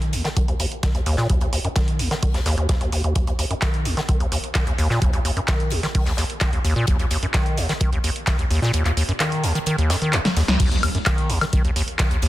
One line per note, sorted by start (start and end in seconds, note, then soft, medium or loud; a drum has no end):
0.00 0.15 D#3 medium
0.00 closed hi-hat soft
0.13 0.23 D#2 medium
0.13 closed hi-hat medium
0.13 open hi-hat loud
0.24 0.29 D#3 medium
0.24 snare soft
0.24 closed hi-hat soft
0.37 0.46 D#3 medium
0.37 kick loud
0.37 closed hi-hat medium
0.48 0.55 D#2 medium
0.48 closed hi-hat soft
0.60 0.66 D#2 medium
0.60 closed hi-hat medium
0.60 open hi-hat loud
0.72 closed hi-hat soft
0.83 0.93 D#3 medium
0.83 kick loud
0.83 snare loud
0.83 closed hi-hat medium
0.95 1.01 D#2 medium
0.95 closed hi-hat soft
1.06 1.16 D#2 loud
1.06 closed hi-hat medium
1.06 open hi-hat loud
1.17 1.28 A#2 medium
1.17 snare soft
1.30 1.39 D#2 medium
1.30 kick loud
1.30 closed hi-hat medium
1.41 1.48 D#2 medium
1.41 closed hi-hat soft
1.53 1.59 D#2 medium
1.53 closed hi-hat medium
1.53 open hi-hat loud
1.65 1.68 F#2 medium
1.65 closed hi-hat soft
1.76 2.01 D#3 medium
1.76 kick loud
1.76 snare loud
1.76 closed hi-hat medium
1.88 closed hi-hat soft
1.99 2.09 D#2 loud
1.99 closed hi-hat medium
1.99 open hi-hat loud
2.11 2.15 D#3 medium
2.11 snare soft
2.11 closed hi-hat soft
2.23 2.32 D#3 medium
2.23 kick loud
2.23 closed hi-hat medium
2.23 open hi-hat medium
2.34 2.41 D#2 medium
2.34 snare soft
2.34 closed hi-hat soft
2.46 2.56 D#2 loud
2.46 snare soft
2.46 closed hi-hat medium
2.46 open hi-hat loud
2.58 2.67 D#2 medium
2.58 closed hi-hat soft
2.69 kick loud
2.69 snare loud
2.69 closed hi-hat medium
2.81 2.90 D#2 medium
2.81 closed hi-hat soft
2.92 3.02 D#2 medium
2.92 closed hi-hat medium
2.92 open hi-hat loud
3.04 3.14 D#2 medium
3.04 closed hi-hat soft
3.15 3.25 D#2 medium
3.15 kick loud
3.15 closed hi-hat medium
3.27 3.34 D#2 medium
3.27 closed hi-hat soft
3.39 3.45 D#2 medium
3.39 closed hi-hat medium
3.39 open hi-hat loud
3.51 3.54 F#2 medium
3.51 closed hi-hat soft
3.62 3.87 D#3 medium
3.62 kick medium
3.62 snare loud
3.62 clap loud
3.62 closed hi-hat medium
3.74 closed hi-hat soft
3.85 3.95 D#2 loud
3.85 closed hi-hat medium
3.85 open hi-hat loud
3.97 4.01 D#3 medium
3.97 snare soft
3.97 closed hi-hat soft
4.09 4.18 D#3 medium
4.09 kick loud
4.09 closed hi-hat medium
4.20 4.27 D#2 medium
4.20 closed hi-hat soft
4.32 4.38 D#2 medium
4.32 closed hi-hat medium
4.32 open hi-hat loud
4.44 closed hi-hat soft
4.55 4.65 D#3 medium
4.55 kick loud
4.55 snare loud
4.55 clap loud
4.55 closed hi-hat medium
4.67 4.73 D#2 medium
4.67 closed hi-hat soft
4.78 4.88 D#2 loud
4.78 closed hi-hat medium
4.78 open hi-hat loud
4.90 5.00 A#2 loud
4.90 snare soft
5.02 5.11 D#2 medium
5.02 kick loud
5.02 closed hi-hat medium
5.13 5.20 D#2 medium
5.13 closed hi-hat soft
5.25 5.31 D#2 medium
5.25 closed hi-hat medium
5.25 open hi-hat medium
5.37 5.40 F#2 medium
5.37 closed hi-hat soft
5.48 5.73 D#3 medium
5.48 kick loud
5.48 snare loud
5.48 clap loud
5.48 closed hi-hat medium
5.60 closed hi-hat soft
5.70 5.81 D#2 loud
5.70 closed hi-hat medium
5.70 open hi-hat medium
5.83 5.87 D#3 medium
5.83 snare soft
5.83 closed hi-hat soft
5.95 6.04 D#3 medium
5.95 kick loud
5.95 closed hi-hat medium
5.95 open hi-hat medium
6.06 6.13 D#2 medium
6.06 snare soft
6.06 closed hi-hat soft
6.17 6.24 D#2 medium
6.17 snare soft
6.17 closed hi-hat medium
6.17 open hi-hat loud
6.30 closed hi-hat soft
6.41 6.51 D#3 medium
6.41 kick loud
6.41 snare loud
6.41 clap loud
6.41 closed hi-hat medium
6.53 6.59 D#2 medium
6.53 closed hi-hat soft
6.65 6.74 D#2 loud
6.65 closed hi-hat medium
6.65 open hi-hat loud
6.76 6.86 A#2 loud
6.87 6.97 D#2 medium
6.87 kick loud
6.87 closed hi-hat medium
6.99 7.06 D#2 medium
6.99 closed hi-hat soft
7.11 7.17 D#2 medium
7.11 closed hi-hat medium
7.11 open hi-hat loud
7.23 7.27 F#2 medium
7.23 closed hi-hat soft
7.34 7.59 D#3 medium
7.34 kick loud
7.34 snare loud
7.34 clap loud
7.34 closed hi-hat medium
7.46 closed hi-hat soft
7.58 7.67 D#2 loud
7.58 closed hi-hat medium
7.58 open hi-hat medium
7.69 7.73 D#3 medium
7.69 snare soft
7.69 closed hi-hat soft
7.81 7.90 D#3 medium
7.81 kick loud
7.81 closed hi-hat medium
7.92 7.99 D#2 medium
7.92 closed hi-hat soft
8.04 8.10 D#2 medium
8.04 closed hi-hat medium
8.04 open hi-hat loud
8.16 closed hi-hat soft
8.27 8.37 D#3 medium
8.27 kick loud
8.27 snare loud
8.27 clap loud
8.27 closed hi-hat medium
8.38 8.45 D#2 medium
8.38 closed hi-hat soft
8.50 8.60 D#2 loud
8.50 closed hi-hat medium
8.50 open hi-hat medium
8.62 8.72 A#2 loud
8.62 snare soft
8.73 8.83 D#2 medium
8.73 closed hi-hat medium
8.85 8.92 D#2 medium
8.85 clap soft
8.85 closed hi-hat soft
8.97 9.03 D#2 medium
8.97 closed hi-hat medium
8.97 open hi-hat loud
9.09 9.13 F#2 medium
9.09 closed hi-hat soft
9.20 9.45 D#3 medium
9.20 snare loud
9.20 clap loud
9.20 closed hi-hat medium
9.32 closed hi-hat soft
9.43 9.53 D#2 loud
9.43 closed hi-hat medium
9.43 open hi-hat loud
9.55 9.59 D#3 medium
9.55 closed hi-hat soft
9.66 9.76 D#3 medium
9.66 closed hi-hat medium
9.78 9.92 D#2 medium
9.78 closed hi-hat soft
9.90 9.96 F#2 medium
9.90 snare loud
9.90 closed hi-hat medium
9.90 open hi-hat loud
10.02 10.15 D#3 medium
10.02 closed hi-hat soft
10.13 10.20 D#2 medium
10.13 clap loud
10.13 closed hi-hat medium
10.25 10.29 D#3 medium
10.25 snare medium
10.25 snare soft
10.25 closed hi-hat soft
10.37 10.43 D#2 loud
10.37 snare loud
10.37 closed hi-hat medium
10.37 open hi-hat loud
10.48 10.58 C#2 medium
10.48 snare loud
10.60 10.69 D#2 medium
10.60 kick loud
10.60 closed hi-hat loud
10.60 closed hi-hat medium
10.60 crash loud
10.72 10.78 D#2 medium
10.72 closed hi-hat soft
10.83 10.89 D#2 medium
10.83 closed hi-hat medium
10.83 open hi-hat loud
10.83 high woodblock medium
10.95 10.99 F#2 medium
10.95 closed hi-hat soft
11.06 11.31 D#3 medium
11.06 kick loud
11.06 snare loud
11.06 clap loud
11.06 closed hi-hat loud
11.06 closed hi-hat medium
11.06 high woodblock medium
11.18 closed hi-hat soft
11.30 11.39 D#2 loud
11.30 closed hi-hat medium
11.30 open hi-hat loud
11.41 11.45 D#3 medium
11.41 snare soft
11.41 closed hi-hat soft
11.41 high woodblock medium
11.53 11.63 D#3 medium
11.53 kick loud
11.53 closed hi-hat medium
11.53 closed hi-hat loud
11.65 11.71 D#2 medium
11.65 closed hi-hat soft
11.76 11.83 D#2 medium
11.76 closed hi-hat medium
11.76 open hi-hat loud
11.88 closed hi-hat soft
11.99 12.09 D#3 medium
11.99 kick loud
11.99 snare loud
11.99 clap loud
11.99 closed hi-hat medium
11.99 closed hi-hat loud
12.11 12.17 D#2 medium
12.11 closed hi-hat soft
12.22 12.28 D#2 loud
12.22 closed hi-hat medium
12.22 open hi-hat loud